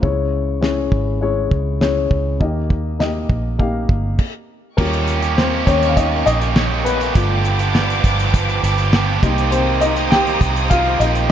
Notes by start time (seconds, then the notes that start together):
0.02 C#2 C#3 G#3 C#4 E4 C#5, kick
0.61 G#3 C#4 E4 C#5, snare
0.92 G#1, kick
1.21 G#3 C#4 E4 C#5
1.51 C#2, kick
1.81 G#3 C#4 E4 C#5, snare
2.11 C#2, kick
2.40 D#2 D#3 A#3 D#4 G4 D#5, kick
2.70 kick
2.99 A#3 D#4 G4 D#5, snare
3.29 A#1, kick
3.59 A#3 D#4 G4 F5, kick
3.89 G1, kick
4.19 kick, crash
4.77 D#2 D#3 G3 A#3 C#4 F4 G4 A#4 D#5 G5 C#6, kick, crash
4.93 closed hi-hat
5.07 closed hi-hat
5.22 A#3 C#4 G4, closed hi-hat
5.37 C4 C5, snare
5.67 D#2 D#3 A#3 C#4 G4 C#5, kick, closed hi-hat
5.83 closed hi-hat
5.88 F5
5.97 D#4 D#5, kick, closed hi-hat
6.26 A#1 D#3 A#3 C#4 D#4 G4 D#5, closed hi-hat
6.41 closed hi-hat
6.55 D#3 A#3 C#4 G4, snare
6.85 B3 B4, closed hi-hat
7.00 A#3 C#4 G4, closed hi-hat
7.15 G1 G2 D3 F3 A3 B3 D4 F4 G4 B4 F5 D6, kick, closed hi-hat
7.45 closed hi-hat
7.59 F3 B3 D4 G4, closed hi-hat
7.75 snare
7.90 closed hi-hat
8.04 G1 F3 B3 D4 G4, kick, closed hi-hat
8.19 closed hi-hat
8.34 kick, closed hi-hat
8.49 closed hi-hat
8.63 G1 F3 B3 D4 G4, closed hi-hat
8.78 closed hi-hat
8.92 F3 B3 D4 G4, snare
9.22 C2 C3 D#3 G3 A#3 C4 D#4 G4 C5 A#5 D#6, kick, closed hi-hat
9.38 closed hi-hat
9.51 C4 C5, closed hi-hat
9.81 D#4 D#5, closed hi-hat
9.96 A#3 C4 G4, closed hi-hat
10.10 G4 G5, snare
10.27 closed hi-hat
10.41 C2 D#3 A#3 C4 G4, kick, closed hi-hat
10.56 closed hi-hat
10.70 F4 F5, kick, closed hi-hat
10.99 A#1 D#3 A#3 C4 D#4 G4 D#5, closed hi-hat
11.15 closed hi-hat